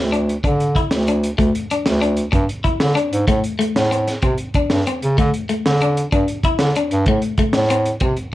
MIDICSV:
0, 0, Header, 1, 5, 480
1, 0, Start_track
1, 0, Tempo, 315956
1, 2112, Time_signature, 12, 3, 24, 8
1, 12670, End_track
2, 0, Start_track
2, 0, Title_t, "Clean electric guitar"
2, 0, Program_c, 0, 27
2, 188, Note_on_c, 0, 62, 64
2, 567, Note_off_c, 0, 62, 0
2, 674, Note_on_c, 0, 62, 72
2, 1051, Note_off_c, 0, 62, 0
2, 1157, Note_on_c, 0, 64, 65
2, 1533, Note_off_c, 0, 64, 0
2, 1645, Note_on_c, 0, 62, 61
2, 2018, Note_off_c, 0, 62, 0
2, 2100, Note_on_c, 0, 57, 79
2, 2484, Note_off_c, 0, 57, 0
2, 2604, Note_on_c, 0, 62, 70
2, 2978, Note_off_c, 0, 62, 0
2, 3061, Note_on_c, 0, 62, 76
2, 3444, Note_off_c, 0, 62, 0
2, 4013, Note_on_c, 0, 64, 72
2, 4399, Note_off_c, 0, 64, 0
2, 4485, Note_on_c, 0, 62, 78
2, 4873, Note_off_c, 0, 62, 0
2, 4985, Note_on_c, 0, 57, 85
2, 5366, Note_off_c, 0, 57, 0
2, 5453, Note_on_c, 0, 57, 79
2, 5838, Note_off_c, 0, 57, 0
2, 5944, Note_on_c, 0, 60, 71
2, 6324, Note_off_c, 0, 60, 0
2, 6425, Note_on_c, 0, 60, 79
2, 6805, Note_off_c, 0, 60, 0
2, 6918, Note_on_c, 0, 62, 79
2, 7292, Note_off_c, 0, 62, 0
2, 7402, Note_on_c, 0, 60, 73
2, 7774, Note_off_c, 0, 60, 0
2, 7873, Note_on_c, 0, 57, 80
2, 8248, Note_off_c, 0, 57, 0
2, 8345, Note_on_c, 0, 57, 69
2, 8723, Note_off_c, 0, 57, 0
2, 8838, Note_on_c, 0, 62, 74
2, 9211, Note_off_c, 0, 62, 0
2, 9303, Note_on_c, 0, 62, 84
2, 9682, Note_off_c, 0, 62, 0
2, 9794, Note_on_c, 0, 64, 76
2, 10169, Note_off_c, 0, 64, 0
2, 10277, Note_on_c, 0, 62, 75
2, 10650, Note_off_c, 0, 62, 0
2, 10754, Note_on_c, 0, 57, 83
2, 11128, Note_off_c, 0, 57, 0
2, 11227, Note_on_c, 0, 57, 79
2, 11604, Note_off_c, 0, 57, 0
2, 11703, Note_on_c, 0, 60, 78
2, 12082, Note_off_c, 0, 60, 0
2, 12176, Note_on_c, 0, 60, 75
2, 12558, Note_off_c, 0, 60, 0
2, 12670, End_track
3, 0, Start_track
3, 0, Title_t, "Bass clarinet"
3, 0, Program_c, 1, 71
3, 0, Note_on_c, 1, 38, 76
3, 530, Note_off_c, 1, 38, 0
3, 665, Note_on_c, 1, 50, 89
3, 1245, Note_off_c, 1, 50, 0
3, 1383, Note_on_c, 1, 38, 83
3, 1964, Note_off_c, 1, 38, 0
3, 2103, Note_on_c, 1, 38, 88
3, 2299, Note_off_c, 1, 38, 0
3, 2834, Note_on_c, 1, 38, 93
3, 3410, Note_off_c, 1, 38, 0
3, 3543, Note_on_c, 1, 43, 86
3, 3739, Note_off_c, 1, 43, 0
3, 4289, Note_on_c, 1, 50, 88
3, 4474, Note_off_c, 1, 50, 0
3, 4747, Note_on_c, 1, 44, 84
3, 4941, Note_off_c, 1, 44, 0
3, 4979, Note_on_c, 1, 45, 90
3, 5176, Note_off_c, 1, 45, 0
3, 5717, Note_on_c, 1, 45, 93
3, 6290, Note_off_c, 1, 45, 0
3, 6423, Note_on_c, 1, 48, 85
3, 6617, Note_off_c, 1, 48, 0
3, 7156, Note_on_c, 1, 43, 83
3, 7344, Note_off_c, 1, 43, 0
3, 7647, Note_on_c, 1, 49, 82
3, 7831, Note_off_c, 1, 49, 0
3, 7875, Note_on_c, 1, 50, 99
3, 8064, Note_off_c, 1, 50, 0
3, 8605, Note_on_c, 1, 50, 99
3, 9174, Note_off_c, 1, 50, 0
3, 9306, Note_on_c, 1, 43, 89
3, 9498, Note_off_c, 1, 43, 0
3, 10032, Note_on_c, 1, 50, 89
3, 10222, Note_off_c, 1, 50, 0
3, 10504, Note_on_c, 1, 43, 86
3, 10696, Note_off_c, 1, 43, 0
3, 10737, Note_on_c, 1, 45, 92
3, 10932, Note_off_c, 1, 45, 0
3, 11466, Note_on_c, 1, 45, 94
3, 12043, Note_off_c, 1, 45, 0
3, 12174, Note_on_c, 1, 48, 87
3, 12370, Note_off_c, 1, 48, 0
3, 12670, End_track
4, 0, Start_track
4, 0, Title_t, "Muted clean electric guitar strokes"
4, 3524, Note_on_c, 9, 29, 84
4, 3676, Note_off_c, 9, 29, 0
4, 12670, End_track
5, 0, Start_track
5, 0, Title_t, "Drums"
5, 202, Note_on_c, 9, 42, 44
5, 354, Note_off_c, 9, 42, 0
5, 445, Note_on_c, 9, 42, 42
5, 597, Note_off_c, 9, 42, 0
5, 667, Note_on_c, 9, 36, 89
5, 677, Note_on_c, 9, 42, 60
5, 819, Note_off_c, 9, 36, 0
5, 829, Note_off_c, 9, 42, 0
5, 914, Note_on_c, 9, 42, 43
5, 1066, Note_off_c, 9, 42, 0
5, 1147, Note_on_c, 9, 36, 51
5, 1153, Note_on_c, 9, 42, 41
5, 1299, Note_off_c, 9, 36, 0
5, 1305, Note_off_c, 9, 42, 0
5, 1381, Note_on_c, 9, 38, 72
5, 1381, Note_on_c, 9, 42, 56
5, 1533, Note_off_c, 9, 38, 0
5, 1533, Note_off_c, 9, 42, 0
5, 1632, Note_on_c, 9, 42, 50
5, 1784, Note_off_c, 9, 42, 0
5, 1876, Note_on_c, 9, 42, 45
5, 2028, Note_off_c, 9, 42, 0
5, 2106, Note_on_c, 9, 36, 89
5, 2119, Note_on_c, 9, 42, 66
5, 2258, Note_off_c, 9, 36, 0
5, 2271, Note_off_c, 9, 42, 0
5, 2355, Note_on_c, 9, 42, 49
5, 2507, Note_off_c, 9, 42, 0
5, 2592, Note_on_c, 9, 42, 49
5, 2744, Note_off_c, 9, 42, 0
5, 2821, Note_on_c, 9, 38, 80
5, 2821, Note_on_c, 9, 42, 66
5, 2973, Note_off_c, 9, 38, 0
5, 2973, Note_off_c, 9, 42, 0
5, 3073, Note_on_c, 9, 42, 49
5, 3225, Note_off_c, 9, 42, 0
5, 3291, Note_on_c, 9, 42, 47
5, 3443, Note_off_c, 9, 42, 0
5, 3539, Note_on_c, 9, 36, 93
5, 3542, Note_on_c, 9, 42, 66
5, 3691, Note_off_c, 9, 36, 0
5, 3694, Note_off_c, 9, 42, 0
5, 3784, Note_on_c, 9, 42, 44
5, 3936, Note_off_c, 9, 42, 0
5, 4020, Note_on_c, 9, 36, 60
5, 4026, Note_on_c, 9, 42, 47
5, 4172, Note_off_c, 9, 36, 0
5, 4178, Note_off_c, 9, 42, 0
5, 4255, Note_on_c, 9, 38, 87
5, 4255, Note_on_c, 9, 42, 56
5, 4407, Note_off_c, 9, 38, 0
5, 4407, Note_off_c, 9, 42, 0
5, 4510, Note_on_c, 9, 42, 52
5, 4662, Note_off_c, 9, 42, 0
5, 4751, Note_on_c, 9, 42, 51
5, 4903, Note_off_c, 9, 42, 0
5, 4976, Note_on_c, 9, 42, 65
5, 4977, Note_on_c, 9, 36, 79
5, 5128, Note_off_c, 9, 42, 0
5, 5129, Note_off_c, 9, 36, 0
5, 5221, Note_on_c, 9, 42, 51
5, 5373, Note_off_c, 9, 42, 0
5, 5479, Note_on_c, 9, 42, 52
5, 5631, Note_off_c, 9, 42, 0
5, 5712, Note_on_c, 9, 38, 76
5, 5712, Note_on_c, 9, 42, 63
5, 5864, Note_off_c, 9, 38, 0
5, 5864, Note_off_c, 9, 42, 0
5, 5956, Note_on_c, 9, 42, 57
5, 6108, Note_off_c, 9, 42, 0
5, 6191, Note_on_c, 9, 38, 24
5, 6191, Note_on_c, 9, 42, 50
5, 6343, Note_off_c, 9, 38, 0
5, 6343, Note_off_c, 9, 42, 0
5, 6417, Note_on_c, 9, 42, 71
5, 6421, Note_on_c, 9, 36, 94
5, 6569, Note_off_c, 9, 42, 0
5, 6573, Note_off_c, 9, 36, 0
5, 6649, Note_on_c, 9, 42, 51
5, 6801, Note_off_c, 9, 42, 0
5, 6900, Note_on_c, 9, 42, 50
5, 6906, Note_on_c, 9, 36, 63
5, 7052, Note_off_c, 9, 42, 0
5, 7058, Note_off_c, 9, 36, 0
5, 7138, Note_on_c, 9, 38, 76
5, 7138, Note_on_c, 9, 42, 58
5, 7290, Note_off_c, 9, 38, 0
5, 7290, Note_off_c, 9, 42, 0
5, 7393, Note_on_c, 9, 42, 50
5, 7545, Note_off_c, 9, 42, 0
5, 7633, Note_on_c, 9, 42, 46
5, 7785, Note_off_c, 9, 42, 0
5, 7870, Note_on_c, 9, 36, 85
5, 7877, Note_on_c, 9, 42, 60
5, 8022, Note_off_c, 9, 36, 0
5, 8029, Note_off_c, 9, 42, 0
5, 8107, Note_on_c, 9, 42, 50
5, 8259, Note_off_c, 9, 42, 0
5, 8342, Note_on_c, 9, 42, 46
5, 8494, Note_off_c, 9, 42, 0
5, 8594, Note_on_c, 9, 38, 81
5, 8594, Note_on_c, 9, 42, 64
5, 8746, Note_off_c, 9, 38, 0
5, 8746, Note_off_c, 9, 42, 0
5, 8829, Note_on_c, 9, 42, 50
5, 8981, Note_off_c, 9, 42, 0
5, 9071, Note_on_c, 9, 42, 51
5, 9223, Note_off_c, 9, 42, 0
5, 9303, Note_on_c, 9, 42, 77
5, 9304, Note_on_c, 9, 36, 101
5, 9455, Note_off_c, 9, 42, 0
5, 9456, Note_off_c, 9, 36, 0
5, 9538, Note_on_c, 9, 42, 50
5, 9690, Note_off_c, 9, 42, 0
5, 9776, Note_on_c, 9, 42, 51
5, 9777, Note_on_c, 9, 36, 62
5, 9928, Note_off_c, 9, 42, 0
5, 9929, Note_off_c, 9, 36, 0
5, 10007, Note_on_c, 9, 38, 89
5, 10007, Note_on_c, 9, 42, 62
5, 10159, Note_off_c, 9, 38, 0
5, 10159, Note_off_c, 9, 42, 0
5, 10263, Note_on_c, 9, 42, 56
5, 10415, Note_off_c, 9, 42, 0
5, 10498, Note_on_c, 9, 42, 50
5, 10650, Note_off_c, 9, 42, 0
5, 10723, Note_on_c, 9, 42, 61
5, 10732, Note_on_c, 9, 36, 88
5, 10875, Note_off_c, 9, 42, 0
5, 10884, Note_off_c, 9, 36, 0
5, 10966, Note_on_c, 9, 42, 54
5, 11118, Note_off_c, 9, 42, 0
5, 11205, Note_on_c, 9, 42, 48
5, 11210, Note_on_c, 9, 36, 62
5, 11357, Note_off_c, 9, 42, 0
5, 11362, Note_off_c, 9, 36, 0
5, 11440, Note_on_c, 9, 38, 87
5, 11440, Note_on_c, 9, 42, 67
5, 11592, Note_off_c, 9, 38, 0
5, 11592, Note_off_c, 9, 42, 0
5, 11697, Note_on_c, 9, 42, 55
5, 11849, Note_off_c, 9, 42, 0
5, 11933, Note_on_c, 9, 42, 46
5, 12085, Note_off_c, 9, 42, 0
5, 12156, Note_on_c, 9, 42, 64
5, 12169, Note_on_c, 9, 36, 97
5, 12307, Note_off_c, 9, 42, 0
5, 12321, Note_off_c, 9, 36, 0
5, 12405, Note_on_c, 9, 42, 48
5, 12557, Note_off_c, 9, 42, 0
5, 12670, End_track
0, 0, End_of_file